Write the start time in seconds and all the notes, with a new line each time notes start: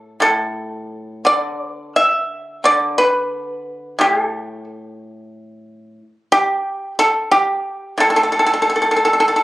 Already playing: A2
0.20 A2 A4
1.25 D3 D5
1.70 B4
1.96 E5
2.64 D3 D5
2.98 B4
3.99 A2 G4
4.20 A4
6.32 G4
6.99 A4
7.31 G4
7.98 A2 A4
8.10 A4
8.16 A4
8.23 A4
8.32 A4
8.39 A4
8.46 A4
8.54 A4
8.62 A4
8.70 A4
8.76 A4
8.82 A4
8.91 A4
8.96 A4
9.05 A4
9.13 A4
9.20 A4
9.28 A4
9.36 A4